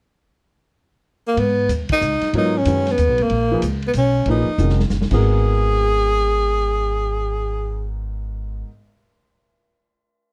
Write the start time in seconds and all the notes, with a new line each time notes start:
1.28 A#3
1.37 G#2 B3, ride
1.69 D#2, hi-hat pedal, ride
1.89 D#4, muted upright bass stroke, kick, ride
2.01 C#2, hi-hat pedal
2.21 muted upright bass stroke, snare, ride
2.33 G#2 F#3 B3 F4 A#4 C#5, ride
2.37 D#4
2.58 C#4
2.65 F#2 D#3 G#3 C#4 F#4 B4, hi-hat pedal, ride
2.87 snare, ride
2.91 B3
2.98 D#2, hi-hat pedal, ride
3.09 B1
3.18 G#1, ride
3.23 A#3
3.30 A#1, ride
3.51 F3 A#3 D#4 G#4 B4
3.62 C#2, hi-hat pedal, ride
3.82 ride
3.87 B3
3.93 B1, hi-hat pedal, ride
3.98 C#4
4.26 A#1 F3 A#3 D#4 G#4 B4, ride
4.31 D#4
4.48 muted upright bass stroke
4.58 F1 D#3 G#3 C#4 F#4 A#4, hi-hat pedal
4.69 snare
4.80 snare
4.90 F#1, snare, hi-hat pedal
5.02 snare
5.11 G#1 G#2 G#3 B3 F#4 G#4 A#4, kick, crash